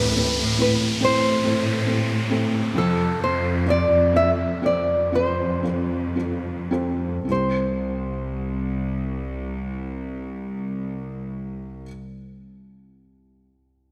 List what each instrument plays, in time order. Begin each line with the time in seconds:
Already playing: cello section A2, felt piano A2 E3 C4 E4 A4 B4, nylon-string guitar B4, downlifter
0.16 felt piano C4 E4 A4 B4
0.38 cello section A2
0.59 felt piano C4 E4 A4 B4, nylon-string guitar B4
1.01 cello section A2, felt piano C4 E4 A4 C5, nylon-string guitar C5
1.44 felt piano C4 E4 A4 C5
1.87 felt piano C4 E4 A4 C5
2.30 felt piano C4 E4 A4 C5
2.74 cello section F2, felt piano C3 C4 F4 A4 C5, nylon-string guitar A4
3.22 cello section F2, nylon-string guitar C5
3.66 felt piano C4 F4 A4 D5
3.70 nylon-string guitar D5
3.92 cello section F2
4.14 felt piano C4 F4 A4 D5, nylon-string guitar E5
4.62 cello section F2, felt piano C4 F4 A4 C5, nylon-string guitar D5
5.12 felt piano C4 F4 A4 D5, nylon-string guitar C5
5.63 felt piano C4 F4 A4 C5
6.16 felt piano C4 F4 A4 C5
6.71 felt piano C4 F4 A4 C5
7.25 felt piano C2 C4 E4
7.30 cello section C2, felt piano G4 C5, nylon-string guitar C5